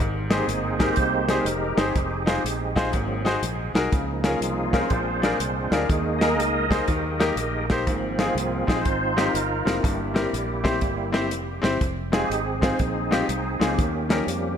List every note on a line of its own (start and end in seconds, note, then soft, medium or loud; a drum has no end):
0.00 0.41 G#1 medium
0.00 0.76 G#2 medium
0.30 1.93 G#3 soft
0.30 1.29 A#3 soft
0.30 1.27 C4 medium
0.30 0.43 D#4 medium
0.30 0.81 D#4 medium
0.30 0.44 G4 medium
0.30 0.44 G#4 medium
0.30 0.83 G#4 medium
0.30 0.44 C5 medium
0.30 snare loud
0.30 closed hi-hat medium
0.48 0.90 G1 medium
0.48 closed hi-hat medium
0.79 0.92 D#4 medium
0.79 1.39 D#4 medium
0.79 0.93 G4 medium
0.79 1.38 G4 medium
0.79 0.93 G#4 medium
0.79 0.93 A#4 medium
0.79 1.41 C5 loud
0.79 kick medium
0.79 snare loud
0.79 closed hi-hat medium
0.96 1.39 C2 medium
0.96 kick loud
0.96 closed hi-hat medium
1.29 1.46 G3 soft
1.29 1.46 A#3 soft
1.29 1.46 C4 soft
1.29 1.42 D#4 medium
1.29 1.42 G4 medium
1.29 1.42 G#4 medium
1.29 1.43 C5 medium
1.29 snare medium
1.29 closed hi-hat medium
1.40 1.79 D#4 medium
1.40 1.93 G4 medium
1.40 1.81 A#4 medium
1.45 1.73 F1 medium
1.45 closed hi-hat medium
1.77 1.93 G1 medium
1.77 2.95 C4 medium
1.77 1.91 D#4 medium
1.77 1.97 D#4 soft
1.77 1.91 G4 medium
1.77 1.91 G#4 medium
1.77 3.72 G#4 medium
1.77 1.91 C5 medium
1.77 snare loud
1.77 closed hi-hat medium
1.95 2.37 F1 medium
1.95 2.91 G#3 soft
1.95 2.91 D#4 soft
1.95 2.91 G4 soft
1.95 kick loud
1.95 closed hi-hat medium
2.26 2.40 D#4 medium
2.26 2.40 F4 medium
2.26 2.40 G#4 medium
2.26 2.40 C5 medium
2.26 snare loud
2.26 closed hi-hat medium
2.44 2.94 A#1 medium
2.44 closed hi-hat medium
2.76 2.89 D#4 medium
2.76 2.89 F4 medium
2.76 2.90 G#4 medium
2.76 2.90 C5 medium
2.76 kick medium
2.76 snare loud
2.76 closed hi-hat medium
2.93 3.36 G#1 medium
2.93 3.71 G#2 medium
2.93 3.31 F#3 medium
2.93 3.31 A#3 soft
2.93 3.32 C4 medium
2.93 kick medium
2.93 closed hi-hat medium
3.25 3.38 D#4 medium
3.25 3.39 F#4 medium
3.25 3.39 G#4 medium
3.25 3.39 C5 medium
3.25 snare medium
3.25 closed hi-hat medium
3.42 3.70 A#1 medium
3.42 closed hi-hat medium
3.74 3.89 C2 medium
3.74 3.88 D#4 medium
3.74 3.88 F#4 medium
3.74 3.88 G#4 medium
3.74 3.88 A#4 medium
3.74 snare loud
3.74 closed hi-hat medium
3.92 4.34 C#2 loud
3.92 4.69 C#3 medium
3.92 4.88 F3 soft
3.92 4.88 A#3 soft
3.92 4.88 D#4 medium
3.92 kick loud
3.92 closed hi-hat medium
4.24 4.37 C#4 medium
4.24 4.37 F4 medium
4.24 4.37 G#4 medium
4.24 4.38 A#4 medium
4.24 snare loud
4.24 closed hi-hat medium
4.28 4.78 F4 medium
4.28 4.77 G#4 medium
4.41 4.83 C2 medium
4.41 closed hi-hat medium
4.73 4.86 C#4 medium
4.73 4.86 F4 medium
4.73 4.87 G#4 medium
4.73 4.87 A#4 medium
4.73 5.76 C5 medium
4.73 kick medium
4.73 snare loud
4.73 closed hi-hat medium
4.78 5.71 F4 medium
4.78 5.70 G#4 medium
4.90 5.33 A#1 medium
4.90 5.68 A#2 medium
4.90 5.86 G#3 soft
4.90 5.86 C4 soft
4.90 5.86 D4 medium
4.90 kick loud
4.90 closed hi-hat medium
5.22 5.35 D4 medium
5.22 5.36 F4 medium
5.22 5.36 G#4 medium
5.22 5.36 A#4 medium
5.22 snare medium
5.22 closed hi-hat medium
5.40 5.67 C2 medium
5.40 closed hi-hat medium
5.70 5.86 D2 medium
5.70 5.85 D4 medium
5.70 5.85 F4 medium
5.70 5.85 G#4 medium
5.70 5.89 A#4 medium
5.70 5.86 A#4 medium
5.70 snare loud
5.70 closed hi-hat medium
5.88 6.38 D#2 medium
5.88 6.67 D#3 medium
5.88 6.66 G#3 soft
5.88 6.67 A#3 soft
5.88 6.67 D#4 medium
5.88 6.21 G#4 medium
5.88 kick loud
5.88 closed hi-hat medium
6.19 6.34 A#3 medium
6.19 6.34 D#4 medium
6.19 6.34 G#4 medium
6.19 7.66 G#4 medium
6.19 7.65 A#4 medium
6.19 7.64 D#5 medium
6.19 snare loud
6.19 closed hi-hat medium
6.23 6.35 A#4 medium
6.38 6.80 C#2 medium
6.38 closed hi-hat medium
6.70 6.83 A#3 medium
6.70 6.83 D#4 medium
6.70 6.84 G#4 medium
6.70 6.84 C5 medium
6.70 kick medium
6.70 snare loud
6.70 closed hi-hat medium
6.88 7.30 D#2 medium
6.88 7.65 D#3 medium
6.88 7.66 A#3 soft
6.88 7.67 D#4 medium
6.88 7.66 G4 soft
6.88 kick medium
6.88 closed hi-hat medium
7.19 7.33 A#3 medium
7.19 7.33 D#4 medium
7.19 7.33 G4 medium
7.19 7.33 A#4 medium
7.19 snare medium
7.19 closed hi-hat medium
7.36 7.87 A#1 medium
7.36 closed hi-hat medium
7.70 7.82 A#3 medium
7.70 7.82 D#4 medium
7.70 7.83 G4 medium
7.70 7.83 C5 medium
7.70 kick medium
7.70 snare loud
7.70 closed hi-hat medium
7.87 8.29 G#1 medium
7.87 8.64 G#2 medium
7.87 8.64 F3 soft
7.87 8.65 A#3 soft
7.87 8.19 C4 soft
7.87 kick loud
7.87 closed hi-hat medium
8.19 8.31 C4 medium
8.19 9.14 C4 medium
8.19 8.32 D#4 medium
8.19 8.32 F4 medium
8.19 8.68 F4 medium
8.19 8.70 G#4 medium
8.19 8.32 G#4 medium
8.19 snare loud
8.19 closed hi-hat medium
8.35 8.63 C2 medium
8.35 closed hi-hat medium
8.67 8.83 A#1 medium
8.67 8.80 C4 medium
8.67 8.81 D#4 medium
8.67 9.27 D#4 medium
8.67 8.81 F4 medium
8.67 9.28 F4 medium
8.67 8.81 G#4 medium
8.67 9.28 C5 loud
8.67 kick medium
8.67 snare loud
8.67 closed hi-hat medium
8.85 9.27 G#1 medium
8.85 kick medium
8.85 closed hi-hat medium
9.17 9.30 C4 medium
9.17 9.30 D#4 medium
9.17 9.30 F4 medium
9.17 9.30 G4 medium
9.17 snare loud
9.17 closed hi-hat medium
9.28 9.81 D#4 medium
9.28 9.81 F4 medium
9.28 9.69 A#4 medium
9.34 9.62 G1 medium
9.34 closed hi-hat medium
9.65 9.81 F1 medium
9.65 9.79 C4 medium
9.65 9.79 D#4 medium
9.65 9.79 F4 medium
9.65 11.61 G4 medium
9.65 9.79 A#4 medium
9.65 snare loud
9.65 closed hi-hat medium
9.70 10.17 A#3 medium
9.70 10.17 E4 soft
9.83 10.26 G1 medium
9.83 10.61 G2 medium
9.83 kick loud
9.83 closed hi-hat medium
10.14 11.13 G3 soft
10.14 10.28 C4 medium
10.14 10.28 E4 medium
10.14 10.28 G4 medium
10.14 10.28 A#4 medium
10.14 snare medium
10.14 closed hi-hat medium
10.19 11.14 A#3 soft
10.19 11.14 E4 medium
10.33 10.82 A#1 medium
10.33 closed hi-hat medium
10.64 10.77 C4 medium
10.64 10.77 E4 medium
10.64 10.77 G4 medium
10.64 10.78 C5 medium
10.64 kick medium
10.64 snare loud
10.64 closed hi-hat medium
10.81 11.31 G1 medium
10.81 kick medium
10.81 closed hi-hat medium
11.12 11.30 G3 soft
11.12 11.31 A#3 soft
11.12 11.26 C4 medium
11.12 11.27 E4 medium
11.12 11.30 E4 soft
11.12 11.27 G4 medium
11.12 11.27 C5 medium
11.12 snare medium
11.12 closed hi-hat medium
11.31 11.59 F1 medium
11.31 closed hi-hat medium
11.62 11.78 G1 medium
11.62 11.75 C4 medium
11.62 11.76 E4 medium
11.62 11.76 G4 medium
11.62 11.76 C5 medium
11.62 snare loud
11.62 closed hi-hat medium
11.81 12.23 F1 loud
11.81 kick loud
11.81 closed hi-hat medium
12.12 12.42 G#3 soft
12.12 12.25 C4 medium
12.12 12.79 C4 medium
12.12 12.26 D#4 medium
12.12 12.43 D#4 medium
12.12 12.26 F4 medium
12.12 12.41 G4 medium
12.12 12.26 G#4 medium
12.12 12.64 G#4 medium
12.12 snare loud
12.12 closed hi-hat medium
12.30 12.72 G#1 medium
12.30 closed hi-hat medium
12.61 12.75 C4 medium
12.61 12.75 D#4 medium
12.61 12.75 F4 medium
12.61 12.75 G#4 medium
12.61 12.80 C5 medium
12.61 kick medium
12.61 snare loud
12.61 closed hi-hat medium
12.79 13.22 A#1 medium
12.79 13.74 C4 medium
12.79 13.74 D#4 medium
12.79 13.63 G#4 medium
12.79 kick medium
12.79 closed hi-hat medium
13.11 13.24 C4 medium
13.11 13.24 D#4 medium
13.11 13.24 F4 medium
13.11 13.25 G4 medium
13.11 snare medium
13.11 closed hi-hat medium
13.29 13.56 C2 medium
13.29 closed hi-hat medium
13.59 13.75 C#2 medium
13.59 14.57 A#3 soft
13.59 13.73 C4 medium
13.59 13.74 D#4 medium
13.59 13.74 F4 medium
13.59 14.57 G4 medium
13.59 13.74 G#4 medium
13.59 snare loud
13.59 closed hi-hat medium
13.64 14.12 C#4 medium
13.78 14.20 D#2 loud
13.78 14.55 D#3 medium
13.78 kick loud
13.78 closed hi-hat medium
14.09 14.57 F3 soft
14.09 14.57 G3 soft
14.09 14.23 C#4 medium
14.09 14.57 C#4 medium
14.09 14.23 D#4 medium
14.09 14.23 G4 medium
14.09 14.23 A#4 medium
14.09 snare loud
14.09 closed hi-hat medium
14.27 14.57 F2 medium
14.27 closed hi-hat medium